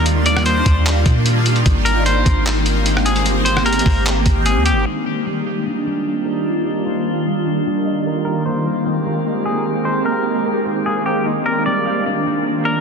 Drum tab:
HH |x-----x-----x-----x-----x-----x-----x-----x--x--|x-----x-----x-----x-----x-----x-----x-----x--x--|x-----x-----x-x-x-o-----x-----x-----x-----x-----|------------------------------------------------|
CP |------------------------x-----------------------|------------------------x-----------------------|------------------------x-----------------------|------------------------------------------------|
SD |---------r--------------------------------------|---------------------------------------r--------|---------r--------------------------------------|------------------------------------------------|
BD |------------------o-----------o-----------------|o-----------------o-----------------------------|------------------o-----------o-----------------|------------------------------------------------|

HH |------------------------------------------------|------------------------------------------------|------------------------------------------------|------------------------------------------------|
CP |------------------------------------------------|------------------------------------------------|------------------------------------------------|------------------------------------------------|
SD |------------------------------------------------|------------------------------------------------|------------------------------------------------|------------------------------------------------|
BD |------------------------------------------------|------------------------------------------------|------------------------------------------------|------------------------------------------------|